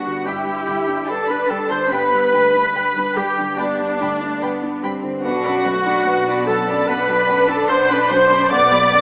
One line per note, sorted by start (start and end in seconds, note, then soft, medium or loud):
0.00 0.23 G2 soft
0.00 0.05 D3 soft
0.00 0.46 G3 soft
0.00 0.25 B3 medium
0.00 0.27 D4 medium
0.00 0.87 D4 soft
0.00 0.26 F#4 medium
0.00 0.30 F#4 medium
0.00 1.08 B4 soft
0.00 0.26 F#5 medium
0.05 0.39 D3 soft
0.25 1.88 G2 soft
0.25 0.35 G2 soft
0.25 1.08 E4 medium
0.25 1.08 G4 medium
0.25 1.09 G4 medium
0.25 1.08 G5 medium
0.25 0.34 G5 soft
0.25 0.34 B5 soft
0.46 0.79 G3 soft
0.66 0.75 G2 medium
0.66 1.00 D3 soft
0.66 0.74 G5 soft
0.66 0.74 B5 soft
0.87 1.21 D4 soft
1.06 1.16 G2 soft
1.06 1.92 D4 medium
1.06 1.29 A4 medium
1.06 1.42 B4 soft
1.06 1.15 G5 soft
1.06 1.28 A5 medium
1.06 1.15 B5 soft
1.11 1.32 A4 medium
1.28 1.62 D4 soft
1.28 1.50 B4 medium
1.28 1.52 B4 medium
1.28 1.49 B5 medium
1.49 1.58 G2 medium
1.49 1.83 G3 soft
1.49 1.71 A4 medium
1.49 1.73 A4 medium
1.49 1.71 A4 medium
1.49 1.57 G5 soft
1.49 1.70 A5 medium
1.49 1.57 B5 soft
1.70 2.04 D3 soft
1.70 1.94 C5 medium
1.70 1.92 C5 medium
1.70 1.93 C5 medium
1.70 1.91 C6 medium
1.90 3.54 G2 soft
1.90 2.00 G2 medium
1.90 2.34 B3 medium
1.90 3.14 B4 medium
1.90 3.18 B4 medium
1.90 3.15 B4 medium
1.90 1.99 G5 medium
1.90 3.13 B5 medium
1.90 1.99 B5 medium
2.13 2.46 G3 soft
2.33 2.42 G2 medium
2.33 2.67 D3 soft
2.33 2.75 A3 medium
2.33 2.41 G5 soft
2.33 2.41 B5 soft
2.54 2.88 D4 soft
2.75 2.84 G2 medium
2.75 3.58 G3 medium
2.75 3.08 B4 soft
2.75 2.83 G5 soft
2.75 2.83 B5 soft
2.97 3.30 D4 soft
3.16 3.24 G2 medium
3.16 3.50 G3 soft
3.16 3.58 G4 medium
3.16 3.60 G4 medium
3.16 3.58 G4 medium
3.16 3.24 G5 soft
3.16 3.57 G5 medium
3.16 3.24 B5 soft
3.38 3.71 D3 soft
3.57 3.66 G2 medium
3.57 5.20 G2 soft
3.57 3.99 B3 medium
3.57 4.83 D4 medium
3.57 4.83 D5 medium
3.57 3.66 G5 medium
3.57 3.67 B5 medium
3.79 4.13 G3 soft
4.00 4.08 G2 medium
4.00 4.34 D3 soft
4.00 4.42 A3 medium
4.00 4.08 G5 medium
4.00 4.08 B5 soft
4.21 4.54 D4 soft
4.41 4.50 G2 medium
4.41 4.83 B3 medium
4.41 4.75 B4 soft
4.41 4.50 G5 medium
4.41 4.50 B5 medium
4.62 4.95 D4 soft
4.83 4.91 G2 medium
4.83 5.16 G3 soft
4.83 5.24 C4 medium
4.83 4.91 G5 medium
4.83 4.91 B5 medium
5.03 5.24 D3 soft
5.23 5.97 B1 medium
5.23 6.84 B1 medium
5.23 5.65 D4 medium
5.23 6.43 F#4 medium
5.23 6.49 F#4 medium
5.23 6.44 F#4 medium
5.23 5.43 B4 medium
5.23 6.43 F#5 medium
5.23 5.43 F#5 medium
5.45 5.78 F#2 soft
5.45 5.66 D5 soft
5.45 5.65 B5 medium
5.65 5.98 F#3 soft
5.65 6.07 A3 medium
5.65 5.86 B4 soft
5.65 5.86 F#5 soft
5.86 6.19 D4 soft
5.86 6.07 D5 medium
5.86 6.07 B5 soft
6.06 6.79 B1 medium
6.06 6.88 B3 medium
6.06 6.40 B4 medium
6.06 6.26 B4 soft
6.06 6.26 F#5 soft
6.27 6.60 D4 soft
6.27 6.48 D5 soft
6.27 6.48 B5 soft
6.47 6.80 F#3 soft
6.47 6.89 A4 medium
6.47 6.87 A4 medium
6.47 6.88 A4 medium
6.47 6.68 B4 medium
6.47 6.68 F#5 soft
6.47 6.88 A5 medium
6.68 7.00 F#2 soft
6.68 6.88 D5 medium
6.68 6.88 B5 medium
6.87 8.47 B1 soft
6.87 7.59 B1 medium
6.87 8.51 D4 medium
6.87 7.50 B4 medium
6.87 7.48 B4 medium
6.87 7.49 B4 medium
6.87 7.07 B4 medium
6.87 7.08 F#5 medium
6.87 7.49 B5 medium
7.08 7.40 F#3 soft
7.08 7.29 D5 soft
7.08 7.29 B5 medium
7.28 7.61 F#2 soft
7.28 7.49 B4 medium
7.28 7.49 F#5 medium
7.48 7.81 D4 soft
7.48 7.71 A4 medium
7.48 7.69 A4 medium
7.48 7.70 A4 medium
7.48 7.70 D5 soft
7.48 7.69 A5 medium
7.48 7.69 B5 medium
7.68 8.41 B1 medium
7.68 8.01 B4 soft
7.68 7.88 B4 medium
7.68 7.89 C5 medium
7.68 7.92 C5 medium
7.68 7.88 F#5 medium
7.68 7.89 C6 medium
7.88 8.22 D4 soft
7.88 8.09 B4 medium
7.88 8.12 B4 medium
7.88 8.11 B4 medium
7.88 8.10 D5 medium
7.88 8.09 B5 medium
7.88 8.10 B5 medium
8.10 8.43 F#3 soft
8.10 8.31 B4 soft
8.10 8.51 C5 medium
8.10 8.52 C5 medium
8.10 8.51 C5 medium
8.10 8.31 F#5 medium
8.10 8.51 C6 medium
8.30 8.63 F#2 soft
8.30 8.51 D5 medium
8.30 8.51 B5 medium
8.51 9.01 B1 medium
8.51 9.01 B3 medium
8.51 8.70 B4 medium
8.51 9.01 D5 medium
8.51 9.01 D5 loud
8.51 9.01 D5 medium
8.51 8.70 F#5 medium
8.51 9.01 D6 medium
8.72 9.01 F#3 soft
8.72 8.92 D5 medium
8.72 8.92 B5 medium
8.91 9.01 F#2 soft
8.91 9.01 B4 medium
8.91 9.01 F#5 medium